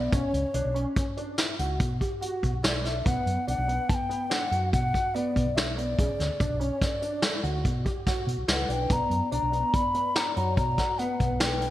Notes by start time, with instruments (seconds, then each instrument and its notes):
Already playing: ocarina D5
0.12 fingered electric bass B1, grand piano C#4, ocarina C#5, kick, closed hi-hat
0.33 fingered electric bass C#2, closed hi-hat
0.54 fingered electric bass B1, grand piano D4, closed hi-hat
0.65 fingered electric bass B1
0.74 grand piano C#4, closed hi-hat
0.96 kick, closed hi-hat
1.17 grand piano D4, closed hi-hat
1.38 grand piano E4, snare, closed hi-hat
1.59 fingered electric bass C#2, grand piano F#4, closed hi-hat
1.80 fingered electric bass B2, kick, closed hi-hat
2.00 grand piano G4, kick, closed hi-hat
2.21 grand piano F#4, closed hi-hat
2.43 fingered electric bass B2, kick, closed hi-hat
2.53 fingered electric bass B1
2.63 grand piano E4, ocarina D5, snare, closed hi-hat
2.84 grand piano D4, ocarina E5, snare, closed hi-hat
3.05 fingered electric bass B1, grand piano B3, ocarina F#5, kick, closed hi-hat
3.26 fingered electric bass F#2, closed hi-hat
3.47 fingered electric bass B1, grand piano D4, ocarina F#5, closed hi-hat
3.58 fingered electric bass B1
3.68 grand piano B3, closed hi-hat
3.89 ocarina A5, kick, closed hi-hat
3.94 ocarina G5
4.09 grand piano B3, closed hi-hat
4.30 grand piano D4, ocarina F#5, snare, closed hi-hat
4.51 fingered electric bass F#2, grand piano F#4, closed hi-hat
4.72 fingered electric bass B2, ocarina F#5, kick, closed hi-hat
4.93 grand piano F#4, kick, closed hi-hat
5.15 grand piano B3, ocarina D5, closed hi-hat
5.36 fingered electric bass B2, kick, closed hi-hat
5.46 fingered electric bass B1
5.55 grand piano D4, ocarina E5, snare, closed hi-hat
5.76 grand piano B3, ocarina D5, closed hi-hat
5.98 fingered electric bass B1, grand piano C#3, kick, closed hi-hat
6.20 fingered electric bass D2, snare, closed hi-hat
6.40 fingered electric bass B1, grand piano D4, kick, closed hi-hat
6.50 fingered electric bass B1
6.59 grand piano C#4, ocarina C#5, closed hi-hat
6.81 ocarina D5, kick, snare, closed hi-hat
7.02 grand piano D4, closed hi-hat
7.22 grand piano E4, snare, closed hi-hat
7.43 fingered electric bass D2, grand piano F#4, closed hi-hat
7.65 fingered electric bass B2, kick, closed hi-hat
7.85 grand piano G4, kick, closed hi-hat
8.06 grand piano F#4, kick, snare, closed hi-hat
8.27 fingered electric bass B2, closed hi-hat
8.37 fingered electric bass B1
8.48 fingered electric bass C#2, grand piano E4, vibraphone B4, ocarina F#5, snare, closed hi-hat
8.69 fingered electric bass B1, grand piano D4, vibraphone B4, ocarina G5, closed hi-hat
8.90 fingered electric bass B1, grand piano B3, vibraphone D5, ocarina A#5, kick, closed hi-hat
9.10 fingered electric bass F#2, closed hi-hat
9.31 fingered electric bass B1, grand piano D4, vibraphone D5, ocarina A#5, closed hi-hat
9.43 fingered electric bass B1
9.52 grand piano B3, closed hi-hat
9.74 vibraphone D5, ocarina B5, kick, closed hi-hat
9.94 grand piano B3, closed hi-hat
10.15 grand piano D4, vibraphone D5, ocarina A#5, snare, closed hi-hat
10.35 fingered electric bass F#2, grand piano F#4, vibraphone C#5, ocarina A#5, closed hi-hat
10.57 fingered electric bass B2, vibraphone D5, ocarina A#5, kick, closed hi-hat
10.78 grand piano F#4, kick, snare, closed hi-hat
10.98 grand piano B3, vibraphone B4, ocarina F#5, closed hi-hat
11.20 fingered electric bass B2, kick, closed hi-hat
11.31 fingered electric bass B1
11.40 grand piano D4, vibraphone B4, ocarina G5, snare, closed hi-hat
11.61 grand piano B3, closed hi-hat